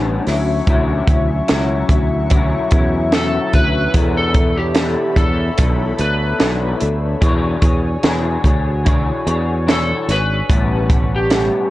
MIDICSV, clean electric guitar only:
0, 0, Header, 1, 2, 480
1, 0, Start_track
1, 0, Tempo, 817773
1, 397, Time_signature, 4, 2, 24, 8
1, 6867, End_track
2, 0, Start_track
2, 0, Title_t, "Clean electric guitar"
2, 0, Program_c, 0, 27
2, 0, Note_on_c, 0, 45, 64
2, 0, Note_on_c, 0, 55, 76
2, 0, Note_on_c, 0, 59, 81
2, 0, Note_on_c, 0, 61, 84
2, 156, Note_off_c, 0, 61, 0
2, 158, Note_on_c, 0, 64, 52
2, 161, Note_off_c, 0, 45, 0
2, 162, Note_off_c, 0, 55, 0
2, 164, Note_off_c, 0, 59, 0
2, 168, Note_on_c, 0, 61, 52
2, 173, Note_on_c, 0, 54, 42
2, 396, Note_off_c, 0, 54, 0
2, 397, Note_on_c, 0, 50, 90
2, 398, Note_off_c, 0, 64, 0
2, 399, Note_off_c, 0, 61, 0
2, 403, Note_on_c, 0, 54, 84
2, 406, Note_on_c, 0, 61, 96
2, 406, Note_on_c, 0, 64, 95
2, 632, Note_off_c, 0, 64, 0
2, 637, Note_off_c, 0, 50, 0
2, 639, Note_on_c, 0, 64, 51
2, 640, Note_off_c, 0, 54, 0
2, 642, Note_off_c, 0, 61, 0
2, 648, Note_on_c, 0, 61, 48
2, 654, Note_on_c, 0, 54, 46
2, 874, Note_off_c, 0, 54, 0
2, 878, Note_off_c, 0, 61, 0
2, 878, Note_off_c, 0, 64, 0
2, 881, Note_on_c, 0, 54, 81
2, 885, Note_on_c, 0, 61, 80
2, 887, Note_on_c, 0, 64, 81
2, 1108, Note_off_c, 0, 64, 0
2, 1115, Note_on_c, 0, 64, 60
2, 1116, Note_off_c, 0, 61, 0
2, 1119, Note_off_c, 0, 54, 0
2, 1123, Note_on_c, 0, 61, 58
2, 1129, Note_on_c, 0, 54, 48
2, 1350, Note_off_c, 0, 54, 0
2, 1352, Note_on_c, 0, 50, 67
2, 1353, Note_off_c, 0, 61, 0
2, 1356, Note_off_c, 0, 64, 0
2, 1357, Note_on_c, 0, 54, 76
2, 1360, Note_on_c, 0, 61, 75
2, 1369, Note_on_c, 0, 64, 74
2, 1589, Note_off_c, 0, 64, 0
2, 1595, Note_off_c, 0, 50, 0
2, 1596, Note_on_c, 0, 64, 61
2, 1597, Note_off_c, 0, 54, 0
2, 1599, Note_off_c, 0, 61, 0
2, 1608, Note_on_c, 0, 61, 62
2, 1611, Note_on_c, 0, 54, 53
2, 1836, Note_off_c, 0, 54, 0
2, 1837, Note_off_c, 0, 64, 0
2, 1838, Note_on_c, 0, 50, 74
2, 1843, Note_off_c, 0, 61, 0
2, 1843, Note_on_c, 0, 54, 76
2, 1850, Note_on_c, 0, 61, 84
2, 1851, Note_on_c, 0, 64, 77
2, 2066, Note_off_c, 0, 64, 0
2, 2073, Note_on_c, 0, 64, 54
2, 2075, Note_off_c, 0, 61, 0
2, 2078, Note_off_c, 0, 50, 0
2, 2080, Note_off_c, 0, 54, 0
2, 2082, Note_on_c, 0, 61, 52
2, 2092, Note_on_c, 0, 54, 46
2, 2315, Note_off_c, 0, 64, 0
2, 2320, Note_off_c, 0, 61, 0
2, 2323, Note_on_c, 0, 52, 78
2, 2325, Note_off_c, 0, 54, 0
2, 2327, Note_on_c, 0, 59, 84
2, 2329, Note_on_c, 0, 62, 90
2, 2332, Note_on_c, 0, 69, 96
2, 2552, Note_off_c, 0, 69, 0
2, 2559, Note_on_c, 0, 69, 49
2, 2560, Note_off_c, 0, 52, 0
2, 2560, Note_off_c, 0, 62, 0
2, 2562, Note_off_c, 0, 59, 0
2, 2567, Note_on_c, 0, 62, 45
2, 2574, Note_on_c, 0, 59, 39
2, 2796, Note_off_c, 0, 59, 0
2, 2798, Note_off_c, 0, 69, 0
2, 2799, Note_on_c, 0, 52, 66
2, 2801, Note_off_c, 0, 62, 0
2, 2803, Note_on_c, 0, 59, 64
2, 2808, Note_on_c, 0, 62, 71
2, 2810, Note_on_c, 0, 69, 71
2, 3025, Note_off_c, 0, 69, 0
2, 3033, Note_on_c, 0, 69, 54
2, 3035, Note_off_c, 0, 62, 0
2, 3038, Note_off_c, 0, 52, 0
2, 3040, Note_off_c, 0, 59, 0
2, 3042, Note_on_c, 0, 62, 53
2, 3049, Note_on_c, 0, 59, 45
2, 3270, Note_off_c, 0, 59, 0
2, 3274, Note_on_c, 0, 52, 62
2, 3275, Note_off_c, 0, 69, 0
2, 3276, Note_off_c, 0, 62, 0
2, 3277, Note_on_c, 0, 59, 63
2, 3283, Note_on_c, 0, 62, 63
2, 3288, Note_on_c, 0, 69, 65
2, 3499, Note_off_c, 0, 69, 0
2, 3506, Note_on_c, 0, 69, 54
2, 3508, Note_off_c, 0, 62, 0
2, 3515, Note_off_c, 0, 59, 0
2, 3515, Note_on_c, 0, 62, 46
2, 3516, Note_off_c, 0, 52, 0
2, 3522, Note_on_c, 0, 59, 42
2, 3747, Note_off_c, 0, 59, 0
2, 3749, Note_on_c, 0, 52, 69
2, 3750, Note_off_c, 0, 62, 0
2, 3752, Note_off_c, 0, 69, 0
2, 3754, Note_on_c, 0, 59, 75
2, 3757, Note_on_c, 0, 62, 82
2, 3760, Note_on_c, 0, 69, 75
2, 3983, Note_off_c, 0, 69, 0
2, 3990, Note_on_c, 0, 69, 50
2, 3992, Note_off_c, 0, 62, 0
2, 3993, Note_off_c, 0, 52, 0
2, 3996, Note_off_c, 0, 59, 0
2, 3999, Note_on_c, 0, 62, 46
2, 4008, Note_on_c, 0, 59, 37
2, 4227, Note_off_c, 0, 62, 0
2, 4231, Note_on_c, 0, 52, 85
2, 4234, Note_off_c, 0, 69, 0
2, 4234, Note_on_c, 0, 62, 87
2, 4237, Note_on_c, 0, 68, 88
2, 4241, Note_on_c, 0, 73, 88
2, 4243, Note_off_c, 0, 59, 0
2, 4462, Note_off_c, 0, 73, 0
2, 4469, Note_on_c, 0, 73, 56
2, 4474, Note_off_c, 0, 68, 0
2, 4475, Note_off_c, 0, 52, 0
2, 4476, Note_off_c, 0, 62, 0
2, 4481, Note_on_c, 0, 68, 56
2, 4487, Note_on_c, 0, 62, 45
2, 4713, Note_off_c, 0, 62, 0
2, 4713, Note_off_c, 0, 73, 0
2, 4717, Note_on_c, 0, 52, 76
2, 4719, Note_off_c, 0, 68, 0
2, 4720, Note_on_c, 0, 62, 82
2, 4727, Note_on_c, 0, 68, 80
2, 4728, Note_on_c, 0, 73, 91
2, 4950, Note_off_c, 0, 73, 0
2, 4957, Note_on_c, 0, 73, 55
2, 4958, Note_off_c, 0, 52, 0
2, 4959, Note_off_c, 0, 62, 0
2, 4960, Note_off_c, 0, 68, 0
2, 4967, Note_on_c, 0, 68, 54
2, 4974, Note_on_c, 0, 62, 50
2, 5186, Note_on_c, 0, 52, 63
2, 5188, Note_off_c, 0, 62, 0
2, 5191, Note_off_c, 0, 68, 0
2, 5195, Note_on_c, 0, 62, 68
2, 5198, Note_off_c, 0, 73, 0
2, 5198, Note_on_c, 0, 68, 67
2, 5207, Note_on_c, 0, 73, 77
2, 5432, Note_off_c, 0, 52, 0
2, 5432, Note_off_c, 0, 73, 0
2, 5436, Note_off_c, 0, 62, 0
2, 5438, Note_off_c, 0, 68, 0
2, 5439, Note_on_c, 0, 73, 61
2, 5445, Note_on_c, 0, 68, 56
2, 5453, Note_on_c, 0, 62, 44
2, 5672, Note_off_c, 0, 62, 0
2, 5674, Note_on_c, 0, 52, 76
2, 5679, Note_off_c, 0, 73, 0
2, 5680, Note_on_c, 0, 62, 68
2, 5682, Note_off_c, 0, 68, 0
2, 5687, Note_on_c, 0, 73, 89
2, 5913, Note_off_c, 0, 73, 0
2, 5916, Note_off_c, 0, 52, 0
2, 5919, Note_off_c, 0, 62, 0
2, 5920, Note_on_c, 0, 73, 56
2, 5926, Note_on_c, 0, 68, 46
2, 5934, Note_on_c, 0, 62, 39
2, 6159, Note_off_c, 0, 73, 0
2, 6160, Note_on_c, 0, 45, 72
2, 6162, Note_off_c, 0, 68, 0
2, 6165, Note_on_c, 0, 55, 78
2, 6166, Note_off_c, 0, 62, 0
2, 6168, Note_on_c, 0, 59, 76
2, 6172, Note_on_c, 0, 61, 83
2, 6387, Note_off_c, 0, 61, 0
2, 6394, Note_on_c, 0, 61, 49
2, 6395, Note_off_c, 0, 59, 0
2, 6399, Note_off_c, 0, 45, 0
2, 6401, Note_off_c, 0, 55, 0
2, 6402, Note_on_c, 0, 59, 48
2, 6410, Note_on_c, 0, 55, 38
2, 6636, Note_off_c, 0, 55, 0
2, 6636, Note_off_c, 0, 61, 0
2, 6640, Note_off_c, 0, 59, 0
2, 6640, Note_on_c, 0, 45, 69
2, 6643, Note_on_c, 0, 55, 69
2, 6647, Note_on_c, 0, 59, 72
2, 6650, Note_on_c, 0, 61, 86
2, 6867, Note_off_c, 0, 45, 0
2, 6867, Note_off_c, 0, 55, 0
2, 6867, Note_off_c, 0, 59, 0
2, 6867, Note_off_c, 0, 61, 0
2, 6867, End_track
0, 0, End_of_file